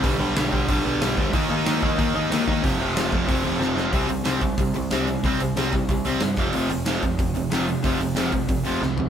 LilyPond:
<<
  \new Staff \with { instrumentName = "Overdriven electric guitar" } { \clef bass \time 4/4 \key f \lydian \tempo 4 = 184 <g, d g>8 <g, d g>8 <g, d g>8 <g, d g>8 <g, d g>8 <g, d g>8 <g, d g>8 <g, d g>8 | <ees bes ees'>8 <ees bes ees'>8 <ees bes ees'>8 <ees bes ees'>8 <ees bes ees'>8 <ees bes ees'>8 <ees bes ees'>8 <ees bes ees'>8 | <f, c f>8 <f, c f>8 <f, c f>8 <f, c f>8 <f, c f>8 <f, c f>8 <f, c f>8 <f, c f>8 | <c g c'>8 <c g>8 <c g c'>8 <c g>8 <c g>8 <c g>8 <c g c'>8 <c g>8 |
<c g c'>8 <c g>8 <c g c'>8 <c g>8 <c g>8 <c g c'>8 <c g>8 <f, c f>8 | <f, c f>8 <f, c>8 <f, c f>8 <f, c>8 <f, c>8 <f, c>8 <f, c f>8 <f, c>8 | <f, c f>8 <f, c>8 <f, c f>8 <f, c>8 <f, c>8 <f, c f>8 <f, c>8 <f, c>8 | }
  \new Staff \with { instrumentName = "Overdriven electric guitar" } { \clef bass \time 4/4 \key f \lydian <g, d g>8 <g, d g>8 <g, d g>8 <g, d g>8 <g, d g>8 <g, d g>8 <g, d g>8 <g, d g>8 | <ees bes ees'>8 <ees bes ees'>8 <ees bes ees'>8 <ees bes ees'>8 <ees bes ees'>8 <ees bes ees'>8 <ees bes ees'>8 <ees bes ees'>8 | <f, c f>8 <f, c f>8 <f, c f>8 <f, c f>8 <f, c f>8 <f, c f>8 <f, c f>8 <f, c f>8 | <c g c'>8 <c g>8 <c g c'>8 <c g>8 <c g>8 <c g>8 <c g c'>8 <c g>8 |
<c g c'>8 <c g>8 <c g c'>8 <c g>8 <c g>8 <c g c'>8 <c g>8 <f, c f>8 | <f, c f>8 <f, c>8 <f, c f>8 <f, c>8 <f, c>8 <f, c>8 <f, c f>8 <f, c>8 | <f, c f>8 <f, c>8 <f, c f>8 <f, c>8 <f, c>8 <f, c f>8 <f, c>8 <f, c>8 | }
  \new Staff \with { instrumentName = "Picked electric bass" } { \clef bass \time 4/4 \key f \lydian b,,8 b,,8 b,,8 b,,8 b,,8 b,,8 b,,8 d,8 | ees,8 ees,8 ees,8 ees,8 ees,8 ees,8 ees,8 ees,8 | f,,8 f,,8 f,,8 f,,8 f,,8 f,,8 f,,8 f,,8 | c,8 c,8 c,8 c,8 c,8 c,8 c,4 |
c,8 c,8 c,4 c,4 g,8 f,,8 | f,,8 f,,8 f,,8 f,,8 f,,8 f,,8 f,,4 | f,,8 f,,8 f,,4 f,,4 c,4 | }
  \new DrumStaff \with { instrumentName = "Drums" } \drummode { \time 4/4 <hho bd>4 <hho sn>8 bd8 <hho bd>4 <hho sn>8 bd8 | <hho bd>4 <hho sn>8 bd8 <hho bd>4 <hho sn>8 bd8 | <hho bd>4 <hho sn>8 bd8 <hho bd>4 sn8 sn8 | <hho bd>8 hho8 <hho sn>8 <hho bd>8 <hho bd>8 hho8 <hho sn>8 hho8 |
<hho bd>8 hho8 <hho sn>8 <hho bd>8 <hho bd>8 hho8 <hho sn>8 <hho bd>8 | hho8 hho8 <hho sn>8 <hho bd>8 <hho bd>8 hho8 <hho sn>8 hho8 | <hho bd>8 hho8 <hho sn>8 <hho bd>8 <hho bd>8 hho8 sn8 tomfh8 | }
>>